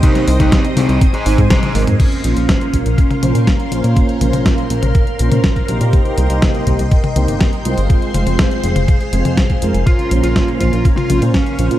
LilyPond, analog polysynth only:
\new Staff \with { instrumentName = "Analog polysynth" } { \time 4/4 \key bes \dorian \tempo 4 = 122 <c g c' ees' c''>8 <c g c' ees' c''>4 <g c' ees' c''>16 r8. <aes, aes c' ees' c''>16 <aes, aes c' ees' c''>16 r8 <aes c' ees' bes'>16 r16 | r8 <bes, bes des' f' c''>4 <bes, bes des' f' c''>16 r8. <bes, bes des' f' c''>16 <bes, bes des' f' c''>16 r8 <bes, bes des' f' c''>8~ | <bes, bes des' f' c''>8 <bes, bes des' f' c''>4 <bes, bes des' f' c''>16 r8. <bes, bes des' f' c''>16 <bes, bes des' f' c''>16 r8 <c bes ees' g' c''>8~ | <c bes ees' g' c''>8 <c bes ees' g' c''>4 <c bes ees' g' c''>16 r8. <c bes ees' g' c''>16 <c bes ees' g' c''>16 r8 <aes c' f' c''>8~ |
<aes c' f' c''>8 <aes c' f' c''>4 <aes c' f' c''>16 r8. <aes c' f' c''>16 <aes c' f' c''>16 r8 <aes c' f' bes'>16 r16 | r8 <bes, bes des' f' c''>4 <bes, bes des' f' c''>16 r8. <bes, bes des' f' c''>16 <bes, bes des' f' c''>16 r8 <bes, bes des' f' c''>8 | }